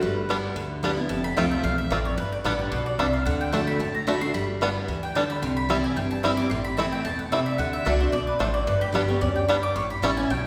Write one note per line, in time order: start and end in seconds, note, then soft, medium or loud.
0.01 0.43 G1 medium
0.01 0.28 G3 medium
0.01 0.79 B4 medium
0.29 0.55 G3 medium
0.29 0.36 G3 medium
0.29 0.56 B3 medium
0.29 0.36 B3 medium
0.29 0.36 D4 medium
0.29 0.56 E4 loud
0.56 0.97 D2 medium
0.56 1.08 D3 medium
0.83 0.97 G3 medium
0.83 0.90 G3 medium
0.83 0.98 B3 loud
0.83 0.90 B3 medium
0.83 0.90 D4 medium
0.83 0.96 E4 loud
0.97 1.11 B3 medium
0.97 1.10 E4 medium
1.09 1.31 F1 medium
1.09 1.61 F2 loud
1.09 1.24 A5 medium
1.24 1.36 B5 loud
1.37 1.60 C2 medium
1.37 1.63 F3 medium
1.37 1.63 A3 medium
1.37 1.44 A3 medium
1.37 1.63 C4 medium
1.37 1.44 C4 medium
1.37 1.44 F4 medium
1.37 1.64 F4 loud
1.37 1.51 G5 medium
1.51 1.63 E5 medium
1.64 1.87 B1 medium
1.64 1.90 E2 medium
1.64 1.78 F5 loud
1.78 1.91 E5 medium
1.90 2.14 A1 medium
1.90 2.17 F2 medium
1.90 1.98 A3 medium
1.90 1.98 C4 medium
1.90 1.98 F4 medium
1.90 2.05 D5 medium
2.05 2.17 C#5 medium
2.17 2.39 G1 medium
2.17 2.70 G2 loud
2.17 2.32 B4 medium
2.32 2.45 D5 loud
2.44 2.68 A1 medium
2.44 2.71 D3 medium
2.44 2.71 G3 medium
2.44 2.52 G3 medium
2.44 2.72 B3 medium
2.44 2.52 B3 medium
2.44 2.52 D4 medium
2.44 2.72 G4 loud
2.44 2.59 F#5 loud
2.59 2.72 D5 medium
2.72 2.95 B1 medium
2.72 2.98 B2 medium
2.72 2.86 B4 medium
2.86 2.99 D5 medium
2.98 3.22 C2 medium
2.98 3.25 C3 medium
2.98 3.06 G3 medium
2.98 3.06 B3 medium
2.98 3.06 D4 medium
2.98 3.13 E5 medium
3.13 3.25 F5 medium
3.25 3.67 D2 medium
3.25 3.51 D3 loud
3.25 3.40 F#5 loud
3.41 3.52 G5 loud
3.52 3.79 D3 medium
3.52 3.60 A3 medium
3.52 3.79 A3 medium
3.52 3.79 D4 loud
3.52 3.56 D4 medium
3.52 3.80 F#4 medium
3.52 3.67 A5 loud
3.67 3.79 B5 loud
3.79 4.21 A1 medium
3.79 4.32 A2 medium
3.79 3.94 A5 loud
3.94 4.07 A#5 medium
4.07 4.21 D3 medium
4.07 4.21 A3 medium
4.07 4.14 A3 medium
4.07 4.22 D4 medium
4.07 4.10 D4 medium
4.07 4.20 F#4 loud
4.07 4.21 B5 medium
4.21 4.35 D4 soft
4.21 4.34 F#4 medium
4.21 4.34 C6 loud
4.34 4.75 G1 medium
4.34 4.60 G3 medium
4.34 4.43 B5 loud
4.61 4.87 G3 medium
4.61 4.68 G3 medium
4.61 4.88 B3 medium
4.61 4.69 B3 medium
4.61 4.69 D4 medium
4.61 4.88 E4 loud
4.88 5.30 D2 medium
4.88 5.14 E3 medium
5.03 5.15 G5 loud
5.15 5.41 D3 medium
5.15 5.23 G3 medium
5.15 5.23 B3 medium
5.15 5.23 D4 medium
5.15 5.29 A5 medium
5.30 5.42 B5 loud
5.42 5.84 C2 medium
5.42 5.94 C3 loud
5.42 5.56 C6 loud
5.57 5.69 B5 loud
5.69 5.95 E3 medium
5.69 5.96 G3 medium
5.69 5.76 G3 medium
5.69 5.76 C4 medium
5.69 5.96 C4 loud
5.69 5.77 E4 medium
5.69 5.96 E4 loud
5.69 5.84 A5 medium
5.84 5.96 G#5 loud
5.96 6.38 G1 medium
5.96 6.49 G2 loud
5.96 6.10 G5 loud
6.11 6.23 A5 loud
6.23 6.38 E3 medium
6.23 6.31 G3 medium
6.23 6.38 G3 loud
6.23 6.31 C4 medium
6.23 6.39 C4 medium
6.23 6.31 E4 medium
6.23 6.36 E4 medium
6.23 6.37 B5 loud
6.37 6.51 C4 medium
6.37 6.50 E4 medium
6.37 6.49 D6 loud
6.50 6.92 A1 medium
6.50 7.03 A2 loud
6.50 6.64 C6 medium
6.65 6.77 B5 loud
6.77 7.04 E3 medium
6.77 7.04 A3 loud
6.77 6.85 A3 medium
6.77 7.04 C4 loud
6.77 6.85 C4 medium
6.77 6.85 E4 medium
6.77 7.05 E4 loud
6.77 6.92 A5 loud
6.92 7.04 G5 loud
7.05 7.46 E1 medium
7.05 7.31 B2 medium
7.05 7.18 A5 loud
7.19 7.31 F#5 medium
7.32 7.58 C3 medium
7.32 7.39 A3 medium
7.32 7.39 C4 medium
7.32 7.39 E4 medium
7.32 7.46 D5 medium
7.46 7.58 E5 loud
7.58 7.80 D2 medium
7.58 7.84 D3 medium
7.58 7.73 F#5 loud
7.73 7.86 E5 loud
7.85 8.09 C2 medium
7.85 8.00 D3 medium
7.85 8.00 A3 medium
7.85 7.93 A3 medium
7.85 8.01 D4 loud
7.85 7.89 D4 medium
7.85 7.99 F#4 medium
7.85 8.00 D5 medium
8.00 8.14 D4 medium
8.00 8.13 F#4 medium
8.00 8.12 C5 medium
8.12 8.36 B1 medium
8.12 8.39 B2 medium
8.12 8.27 D5 loud
8.27 8.39 B4 medium
8.39 8.63 A1 medium
8.39 8.66 A2 medium
8.39 8.47 A3 medium
8.39 8.43 D4 medium
8.39 8.53 C5 medium
8.54 8.67 D5 loud
8.67 9.08 G1 loud
8.67 9.19 G2 loud
8.67 8.82 B4 medium
8.81 8.89 G4 loud
8.92 9.08 D3 medium
8.92 9.08 G3 medium
8.92 9.01 G3 medium
8.92 9.09 B3 loud
8.92 9.01 B3 medium
8.92 9.02 D4 medium
8.92 9.07 G4 medium
9.08 9.22 B3 medium
9.08 9.21 G4 medium
9.08 9.21 C#5 medium
9.21 9.63 D2 medium
9.21 9.47 F#2 medium
9.21 9.36 D5 medium
9.36 9.48 G5 medium
9.48 9.75 G2 medium
9.48 9.56 G3 medium
9.48 9.56 B3 medium
9.48 9.56 D4 medium
9.48 9.63 B5 loud
9.63 9.75 D6 loud
9.75 9.96 A1 medium
9.75 10.28 A2 medium
9.75 9.90 C#6 loud
9.90 10.03 B5 loud
10.02 10.26 A1 medium
10.02 10.17 E3 medium
10.02 10.17 G3 loud
10.02 10.10 G3 medium
10.02 10.17 C#4 medium
10.02 10.10 C#4 medium
10.02 10.16 E4 loud
10.02 10.10 E4 medium
10.02 10.17 A5 loud
10.17 10.30 C#4 medium
10.17 10.29 E4 medium
10.17 10.29 G#5 loud
10.30 10.47 B1 medium
10.30 10.47 B2 medium
10.30 10.45 G5 loud